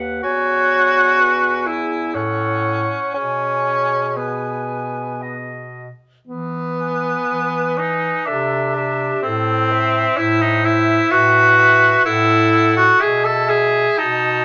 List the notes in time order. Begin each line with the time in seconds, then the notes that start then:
Already playing: D#2 B4 F#5
0.23 E2 F#4 C#5 G#5
1.20 B4
1.66 E4 G#4
2.14 A2 C#4 A4 F#5
3.14 B2 C#4 G#4 G#5
4.16 B3 G#5
5.22 D#5
6.27 E3 B3
6.78 G#5
7.29 E3 B4
7.78 D#4 G#5
8.26 C3 D4 A4 E5
8.76 G4 E5
9.22 A2 C4 A4
9.69 E5
10.17 A2 E4 C5
10.41 D#4
10.63 E4 E5
11.11 A2 F#4 B4
11.57 E5
12.05 A2 E4 A4 F#5
12.52 F#5
12.77 F#4
12.99 B2 G#4 E5
13.24 A4
13.47 G#4 E5
13.97 B2 D#4 F#4 A5